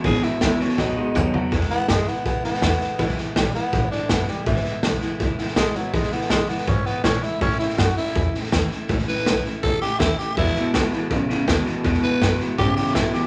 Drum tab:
HH |----p-------p---|----p-------p---|----p-------p---|----p-------p---|
SD |ooo-o-ooo-------|ooo-o-o-o-ooo-o-|ooo-o-o-o-o-o-o-|ooo-o-o-o-ooo-o-|
T2 |------------o---|----------------|----------------|----------------|
FT |--------------o-|----------------|----------------|----------------|
BD |o---o---o---o---|o---o---o---o---|o---o---o---o---|o---o---o---o---|

HH |----p-------p---|----p-------p---|----p-------p---|----p-------p---|
SD |ooooo-ooo-o-o-o-|ooooo-ooo-ooo-o-|ooooo-o-o-o-o-o-|ooo-o-o-o-o-o-o-|
T2 |----------------|----------------|----------------|----------------|
FT |----------------|----------------|----------------|----------------|
BD |o---o---o---o---|o---o---o---o---|o---o---o---o---|o---o---o---o---|

HH |----p-------p---|
SD |ooo-o-o-o-ooo-o-|
T2 |----------------|
FT |----------------|
BD |o---o---o---o---|